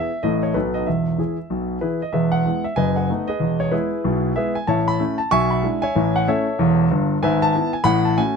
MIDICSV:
0, 0, Header, 1, 2, 480
1, 0, Start_track
1, 0, Key_signature, 4, "major"
1, 0, Tempo, 317628
1, 1310, Time_signature, 4, 2, 24, 8
1, 12641, End_track
2, 0, Start_track
2, 0, Title_t, "Grand piano"
2, 0, Program_c, 0, 0
2, 0, Note_on_c, 0, 76, 85
2, 345, Note_off_c, 0, 76, 0
2, 345, Note_on_c, 0, 75, 70
2, 356, Note_on_c, 0, 33, 56
2, 358, Note_on_c, 0, 45, 63
2, 362, Note_on_c, 0, 57, 35
2, 376, Note_on_c, 0, 64, 36
2, 385, Note_on_c, 0, 69, 38
2, 602, Control_c, 0, 64, 127
2, 623, Note_off_c, 0, 57, 0
2, 632, Note_off_c, 0, 64, 0
2, 639, Note_off_c, 0, 69, 0
2, 647, Note_off_c, 0, 75, 0
2, 648, Note_on_c, 0, 73, 56
2, 761, Note_off_c, 0, 33, 0
2, 762, Note_off_c, 0, 45, 0
2, 819, Note_on_c, 0, 71, 67
2, 822, Note_on_c, 0, 35, 56
2, 822, Note_on_c, 0, 47, 53
2, 827, Note_on_c, 0, 54, 34
2, 830, Note_off_c, 0, 73, 0
2, 836, Note_on_c, 0, 63, 35
2, 849, Control_c, 0, 64, 0
2, 849, Note_on_c, 0, 69, 40
2, 1083, Control_c, 0, 64, 127
2, 1092, Note_off_c, 0, 54, 0
2, 1098, Note_off_c, 0, 63, 0
2, 1107, Note_off_c, 0, 69, 0
2, 1120, Note_on_c, 0, 75, 64
2, 1123, Note_off_c, 0, 71, 0
2, 1233, Note_off_c, 0, 35, 0
2, 1233, Note_off_c, 0, 47, 0
2, 1305, Note_off_c, 0, 75, 0
2, 1306, Note_on_c, 0, 76, 55
2, 1319, Note_on_c, 0, 40, 50
2, 1324, Note_on_c, 0, 28, 44
2, 1329, Control_c, 0, 64, 0
2, 1564, Control_c, 0, 64, 127
2, 1722, Note_off_c, 0, 40, 0
2, 1726, Note_off_c, 0, 28, 0
2, 1789, Note_on_c, 0, 52, 39
2, 1793, Note_on_c, 0, 64, 38
2, 1804, Note_on_c, 0, 68, 41
2, 1807, Control_c, 0, 64, 0
2, 2053, Note_off_c, 0, 52, 0
2, 2056, Note_off_c, 0, 64, 0
2, 2064, Note_off_c, 0, 68, 0
2, 2269, Note_on_c, 0, 35, 49
2, 2269, Note_on_c, 0, 47, 47
2, 2677, Note_off_c, 0, 35, 0
2, 2677, Note_off_c, 0, 47, 0
2, 2739, Note_on_c, 0, 71, 57
2, 2743, Note_on_c, 0, 52, 33
2, 2747, Note_on_c, 0, 64, 43
2, 2756, Note_on_c, 0, 68, 38
2, 3009, Note_off_c, 0, 52, 0
2, 3031, Note_off_c, 0, 68, 0
2, 3034, Note_off_c, 0, 64, 0
2, 3043, Note_off_c, 0, 71, 0
2, 3046, Note_off_c, 0, 76, 0
2, 3054, Note_on_c, 0, 75, 52
2, 3212, Note_on_c, 0, 76, 64
2, 3219, Note_on_c, 0, 40, 58
2, 3225, Note_on_c, 0, 68, 44
2, 3226, Note_on_c, 0, 28, 58
2, 3228, Note_on_c, 0, 71, 46
2, 3232, Note_off_c, 0, 75, 0
2, 3492, Control_c, 0, 64, 127
2, 3501, Note_on_c, 0, 78, 77
2, 3505, Note_off_c, 0, 68, 0
2, 3506, Note_off_c, 0, 71, 0
2, 3520, Note_off_c, 0, 76, 0
2, 3631, Note_off_c, 0, 40, 0
2, 3635, Note_off_c, 0, 28, 0
2, 3707, Note_on_c, 0, 56, 37
2, 3713, Note_on_c, 0, 59, 44
2, 3721, Control_c, 0, 64, 0
2, 3725, Note_on_c, 0, 64, 37
2, 3971, Note_off_c, 0, 56, 0
2, 3976, Note_off_c, 0, 59, 0
2, 3984, Note_off_c, 0, 64, 0
2, 3994, Note_off_c, 0, 78, 0
2, 3995, Note_on_c, 0, 76, 61
2, 4172, Note_on_c, 0, 80, 83
2, 4181, Note_on_c, 0, 30, 62
2, 4182, Note_off_c, 0, 76, 0
2, 4188, Note_on_c, 0, 42, 58
2, 4190, Note_on_c, 0, 75, 68
2, 4191, Note_on_c, 0, 71, 63
2, 4443, Control_c, 0, 64, 127
2, 4467, Note_off_c, 0, 75, 0
2, 4468, Note_off_c, 0, 71, 0
2, 4475, Note_on_c, 0, 78, 51
2, 4479, Note_off_c, 0, 80, 0
2, 4492, Note_on_c, 0, 75, 42
2, 4496, Note_on_c, 0, 71, 43
2, 4592, Note_off_c, 0, 30, 0
2, 4596, Note_off_c, 0, 42, 0
2, 4682, Note_on_c, 0, 57, 41
2, 4686, Control_c, 0, 64, 0
2, 4688, Note_on_c, 0, 59, 35
2, 4697, Note_on_c, 0, 63, 44
2, 4927, Note_off_c, 0, 75, 0
2, 4938, Note_off_c, 0, 71, 0
2, 4942, Note_off_c, 0, 57, 0
2, 4946, Note_off_c, 0, 59, 0
2, 4949, Note_on_c, 0, 75, 68
2, 4953, Note_off_c, 0, 63, 0
2, 4961, Note_off_c, 0, 78, 0
2, 4969, Note_on_c, 0, 68, 51
2, 4975, Note_on_c, 0, 71, 54
2, 5134, Note_on_c, 0, 28, 52
2, 5145, Note_on_c, 0, 40, 57
2, 5400, Control_c, 0, 64, 127
2, 5414, Note_off_c, 0, 68, 0
2, 5418, Note_off_c, 0, 71, 0
2, 5438, Note_off_c, 0, 75, 0
2, 5439, Note_on_c, 0, 73, 66
2, 5548, Note_off_c, 0, 28, 0
2, 5554, Note_off_c, 0, 40, 0
2, 5613, Note_on_c, 0, 56, 39
2, 5614, Note_on_c, 0, 71, 67
2, 5623, Note_on_c, 0, 64, 61
2, 5624, Note_off_c, 0, 73, 0
2, 5629, Note_on_c, 0, 59, 36
2, 5629, Note_on_c, 0, 68, 54
2, 5648, Control_c, 0, 64, 0
2, 5881, Note_off_c, 0, 56, 0
2, 5893, Note_off_c, 0, 59, 0
2, 6111, Note_on_c, 0, 35, 63
2, 6117, Note_on_c, 0, 47, 61
2, 6518, Note_off_c, 0, 35, 0
2, 6522, Note_off_c, 0, 47, 0
2, 6525, Note_off_c, 0, 64, 0
2, 6528, Note_off_c, 0, 68, 0
2, 6581, Note_off_c, 0, 71, 0
2, 6586, Note_on_c, 0, 76, 78
2, 6599, Note_on_c, 0, 56, 39
2, 6605, Note_on_c, 0, 59, 43
2, 6607, Note_on_c, 0, 68, 59
2, 6610, Note_on_c, 0, 64, 44
2, 6615, Note_on_c, 0, 71, 57
2, 6860, Note_off_c, 0, 56, 0
2, 6864, Note_off_c, 0, 59, 0
2, 6868, Note_off_c, 0, 64, 0
2, 6877, Note_off_c, 0, 68, 0
2, 6881, Note_off_c, 0, 71, 0
2, 6881, Note_on_c, 0, 80, 73
2, 6886, Note_off_c, 0, 76, 0
2, 7063, Note_on_c, 0, 81, 72
2, 7065, Note_off_c, 0, 80, 0
2, 7068, Note_on_c, 0, 33, 51
2, 7073, Note_on_c, 0, 45, 60
2, 7082, Note_on_c, 0, 76, 52
2, 7085, Note_on_c, 0, 73, 65
2, 7317, Control_c, 0, 64, 127
2, 7354, Note_off_c, 0, 76, 0
2, 7356, Note_off_c, 0, 73, 0
2, 7365, Note_off_c, 0, 81, 0
2, 7371, Note_on_c, 0, 83, 88
2, 7476, Note_off_c, 0, 33, 0
2, 7479, Note_off_c, 0, 45, 0
2, 7551, Note_on_c, 0, 61, 48
2, 7552, Note_on_c, 0, 57, 51
2, 7556, Note_on_c, 0, 64, 46
2, 7571, Control_c, 0, 64, 0
2, 7815, Note_off_c, 0, 57, 0
2, 7815, Note_off_c, 0, 61, 0
2, 7818, Note_off_c, 0, 64, 0
2, 7828, Note_on_c, 0, 81, 73
2, 7850, Note_off_c, 0, 83, 0
2, 8019, Note_off_c, 0, 81, 0
2, 8028, Note_on_c, 0, 85, 115
2, 8034, Note_on_c, 0, 47, 73
2, 8038, Note_on_c, 0, 35, 67
2, 8040, Note_on_c, 0, 80, 87
2, 8041, Note_on_c, 0, 76, 84
2, 8282, Control_c, 0, 64, 127
2, 8313, Note_off_c, 0, 80, 0
2, 8314, Note_off_c, 0, 76, 0
2, 8320, Note_on_c, 0, 83, 71
2, 8328, Note_off_c, 0, 85, 0
2, 8345, Note_on_c, 0, 80, 44
2, 8347, Note_on_c, 0, 76, 56
2, 8440, Note_off_c, 0, 47, 0
2, 8442, Note_off_c, 0, 35, 0
2, 8503, Note_on_c, 0, 56, 41
2, 8512, Note_on_c, 0, 62, 41
2, 8519, Note_on_c, 0, 64, 44
2, 8528, Control_c, 0, 64, 0
2, 8769, Note_off_c, 0, 56, 0
2, 8773, Note_off_c, 0, 80, 0
2, 8776, Note_off_c, 0, 62, 0
2, 8781, Note_off_c, 0, 64, 0
2, 8785, Note_off_c, 0, 76, 0
2, 8795, Note_on_c, 0, 80, 85
2, 8805, Note_off_c, 0, 83, 0
2, 8817, Note_on_c, 0, 73, 67
2, 8818, Note_on_c, 0, 76, 67
2, 9001, Note_on_c, 0, 33, 77
2, 9007, Note_on_c, 0, 45, 66
2, 9244, Control_c, 0, 64, 127
2, 9260, Note_off_c, 0, 73, 0
2, 9260, Note_off_c, 0, 76, 0
2, 9282, Note_off_c, 0, 80, 0
2, 9304, Note_on_c, 0, 78, 82
2, 9405, Note_off_c, 0, 33, 0
2, 9408, Note_off_c, 0, 45, 0
2, 9478, Note_off_c, 0, 78, 0
2, 9489, Control_c, 0, 64, 0
2, 9490, Note_on_c, 0, 76, 78
2, 9492, Note_on_c, 0, 57, 52
2, 9497, Note_on_c, 0, 73, 67
2, 9501, Note_on_c, 0, 61, 48
2, 9504, Note_on_c, 0, 69, 62
2, 9508, Note_on_c, 0, 64, 51
2, 9750, Note_off_c, 0, 57, 0
2, 9757, Note_off_c, 0, 61, 0
2, 9762, Note_off_c, 0, 64, 0
2, 9960, Note_on_c, 0, 40, 84
2, 9964, Note_on_c, 0, 28, 79
2, 10365, Note_off_c, 0, 40, 0
2, 10367, Note_off_c, 0, 28, 0
2, 10384, Note_off_c, 0, 73, 0
2, 10388, Note_off_c, 0, 69, 0
2, 10441, Note_off_c, 0, 76, 0
2, 10441, Note_on_c, 0, 43, 69
2, 10442, Note_on_c, 0, 31, 77
2, 10822, Note_off_c, 0, 31, 0
2, 10822, Note_off_c, 0, 43, 0
2, 10919, Note_on_c, 0, 80, 89
2, 10922, Note_on_c, 0, 32, 69
2, 10923, Note_on_c, 0, 44, 81
2, 10929, Note_on_c, 0, 71, 73
2, 10941, Note_on_c, 0, 76, 79
2, 11162, Control_c, 0, 64, 127
2, 11200, Note_off_c, 0, 71, 0
2, 11206, Note_off_c, 0, 76, 0
2, 11215, Note_off_c, 0, 80, 0
2, 11217, Note_on_c, 0, 81, 100
2, 11326, Note_off_c, 0, 32, 0
2, 11327, Note_off_c, 0, 44, 0
2, 11411, Note_on_c, 0, 59, 54
2, 11413, Control_c, 0, 64, 0
2, 11421, Note_on_c, 0, 64, 54
2, 11670, Note_off_c, 0, 59, 0
2, 11677, Note_off_c, 0, 64, 0
2, 11685, Note_on_c, 0, 80, 77
2, 11695, Note_off_c, 0, 81, 0
2, 11845, Note_on_c, 0, 83, 116
2, 11849, Note_on_c, 0, 33, 77
2, 11858, Note_on_c, 0, 45, 85
2, 11866, Note_on_c, 0, 78, 84
2, 11870, Note_off_c, 0, 80, 0
2, 12119, Control_c, 0, 64, 127
2, 12148, Note_off_c, 0, 78, 0
2, 12159, Note_off_c, 0, 83, 0
2, 12166, Note_on_c, 0, 81, 69
2, 12268, Note_off_c, 0, 33, 0
2, 12273, Note_off_c, 0, 45, 0
2, 12351, Note_off_c, 0, 81, 0
2, 12356, Note_on_c, 0, 57, 52
2, 12357, Note_on_c, 0, 80, 93
2, 12366, Note_on_c, 0, 61, 51
2, 12376, Note_on_c, 0, 66, 51
2, 12377, Control_c, 0, 64, 0
2, 12620, Note_off_c, 0, 57, 0
2, 12627, Note_off_c, 0, 61, 0
2, 12634, Note_off_c, 0, 66, 0
2, 12641, Note_off_c, 0, 80, 0
2, 12641, End_track
0, 0, End_of_file